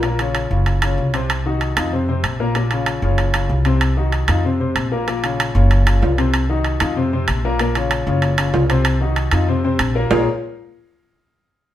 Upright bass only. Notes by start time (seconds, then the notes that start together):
Already playing: A#1
0.51 F#1
0.98 C2
1.77 F2
2.24 A#1
3.02 F#1
3.49 C2
4.28 F2
4.76 A#1
5.55 F#1
6.02 C2
6.81 F2
7.28 A#1
8.07 F#1
8.54 C2
9.32 F2
9.79 A#1
10.11 A#1